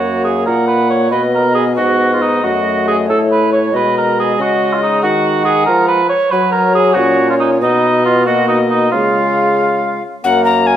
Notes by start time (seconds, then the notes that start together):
Already playing: F#2 A#3 F#4 C#5
0.24 G#4
0.46 A#2 A#4 F#5
0.67 B4
0.90 C#5
1.11 B2 B3 B4 D#5
1.35 A#4
1.54 G#4
1.76 G#2 B3 F#4 D#5
2.13 F4
2.22 D#4
2.43 F#2 A3 F#4
2.88 G#4
3.06 A2 A4 C#5
3.31 B4
3.52 C#5
3.72 B2 G#3 B4 D#5
3.97 A#4
4.20 G#4
4.36 C#3 D#5
4.41 F#4
4.73 F4
4.83 D#4
5.02 D#3 F#4 F#5
5.45 G#4
5.66 F3 A#4
5.88 B4
6.09 C#5
6.31 F#3 B4 C#5
6.52 A#4
6.74 G#4
6.93 C#4 F#4
6.97 A#2
7.30 F4
7.40 D#4
7.61 B2 B3 D#4 D#5
8.05 F4
8.26 A#3 F#4 D#5
8.48 D#4
8.69 D#4
8.91 C#3 G#3 F4 F5
10.24 F#2 A#3 A#4 F#5
10.45 A#5
10.67 G#5